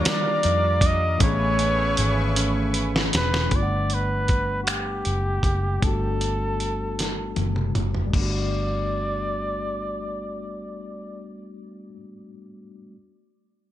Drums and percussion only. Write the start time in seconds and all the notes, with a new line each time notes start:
0.05 snare, closed hi-hat
0.43 closed hi-hat
0.81 kick, closed hi-hat
1.20 kick, closed hi-hat
1.59 closed hi-hat
1.97 closed hi-hat
2.36 closed hi-hat
2.74 closed hi-hat
2.96 snare
3.13 snare, closed hi-hat
3.34 snare
3.51 kick, closed hi-hat
3.90 closed hi-hat
4.28 kick, closed hi-hat
4.67 finger snap, closed hi-hat
5.05 closed hi-hat
5.43 kick, closed hi-hat
5.82 kick, closed hi-hat
6.21 closed hi-hat
6.60 closed hi-hat
6.99 snare, closed hi-hat
7.36 closed hi-hat, high tom
7.56 mid tom
7.75 closed hi-hat, mid tom
7.95 floor tom
8.13 kick, crash